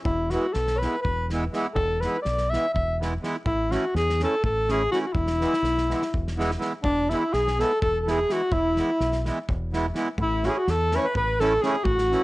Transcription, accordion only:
0.31 0.45 E3 medium
0.31 0.46 G#3 medium
0.31 0.46 B3 medium
0.31 0.46 E4 medium
0.81 0.95 E3 medium
0.81 0.96 G#3 soft
0.81 0.96 B3 soft
0.81 0.96 E4 medium
1.30 1.44 E3 medium
1.30 1.44 G#3 medium
1.30 1.45 B3 medium
1.30 1.45 E4 medium
1.52 1.66 E3 medium
1.52 1.66 G#3 medium
1.52 1.67 B3 medium
1.52 1.67 E4 medium
2.03 2.16 E3 medium
2.03 2.17 G#3 medium
2.03 2.17 B3 medium
2.03 2.17 E4 medium
2.52 2.66 E3 soft
2.52 2.66 G#3 soft
2.52 2.66 B3 soft
2.52 2.66 E4 medium
2.99 3.13 E3 medium
2.99 3.14 G#3 medium
2.99 3.14 B3 medium
2.99 3.14 E4 medium
3.21 3.35 E3 medium
3.21 3.36 G#3 medium
3.21 3.36 B3 medium
3.21 3.37 E4 medium
3.70 3.85 E3 medium
3.70 3.85 A3 medium
3.70 3.85 C#4 medium
3.70 3.86 E4 medium
4.20 4.34 E3 soft
4.20 4.35 A3 soft
4.20 4.35 C#4 soft
4.20 4.35 E4 medium
4.68 4.82 E3 medium
4.68 4.82 A3 medium
4.68 4.82 C#4 medium
4.68 4.83 E4 medium
4.91 5.05 E3 medium
4.91 5.05 A3 medium
4.91 5.06 C#4 medium
4.91 5.06 E4 medium
5.40 5.54 E3 soft
5.40 5.54 G#3 medium
5.40 5.54 B3 medium
5.40 5.55 E4 medium
5.88 6.03 E3 medium
5.88 6.03 G#3 soft
5.88 6.03 B3 medium
5.88 6.03 E4 medium
6.37 6.51 E3 medium
6.37 6.51 G#3 medium
6.37 6.51 B3 medium
6.37 6.51 E4 medium
6.58 6.73 E3 medium
6.58 6.73 G#3 medium
6.58 6.73 B3 medium
6.58 6.73 E4 medium
7.10 7.23 E3 medium
7.10 7.23 G#3 medium
7.10 7.23 B3 medium
7.10 7.24 E4 medium
7.58 7.71 E3 medium
7.58 7.72 G#3 soft
7.58 7.72 B3 soft
7.58 7.72 E4 medium
8.05 8.19 E3 medium
8.05 8.19 G#3 medium
8.05 8.19 B3 medium
8.05 8.20 E4 medium
8.28 8.41 E3 medium
8.28 8.42 G#3 medium
8.28 8.42 B3 medium
8.28 8.42 E4 medium
8.77 8.90 E3 medium
8.77 8.90 G#3 medium
8.77 8.91 B3 medium
8.77 8.91 E4 medium
9.25 9.38 E3 medium
9.25 9.39 G#3 soft
9.25 9.39 B3 medium
9.25 9.39 E4 medium
9.73 9.86 E3 medium
9.73 9.86 G#3 medium
9.73 9.86 B3 medium
9.73 9.87 E4 medium
9.93 10.07 E3 medium
9.93 10.08 G#3 medium
9.93 10.08 B3 medium
9.93 10.09 E4 medium
10.43 10.57 E3 medium
10.43 10.57 A3 medium
10.43 10.58 C#4 medium
10.43 10.57 E4 medium
10.92 11.05 E3 medium
10.92 11.06 A3 medium
10.92 11.06 C#4 medium
10.92 11.06 E4 soft
11.40 11.53 E3 medium
11.40 11.53 A3 medium
11.40 11.53 C#4 medium
11.40 11.54 E4 medium
11.62 11.75 E3 medium
11.62 11.75 A3 medium
11.62 11.76 C#4 medium
11.62 11.76 E4 medium
12.10 12.23 E3 medium
12.10 12.23 A3 medium
12.10 12.23 C#4 medium
12.10 12.23 E4 medium

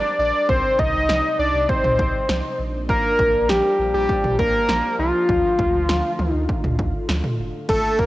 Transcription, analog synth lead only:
0.00 0.19 D5 loud
0.19 0.47 D5 loud
0.49 0.81 C5 loud
0.79 1.38 D#5 loud
1.39 1.71 D5 loud
1.69 2.59 C5 loud
2.89 3.51 A#4 loud
3.49 3.93 G4 loud
3.94 4.36 G4 loud
4.39 4.95 A#4 loud
4.99 6.33 F4 loud
6.33 7.05 D#4 loud
7.69 8.01 A4 medium
7.99 8.06 A#4 loud

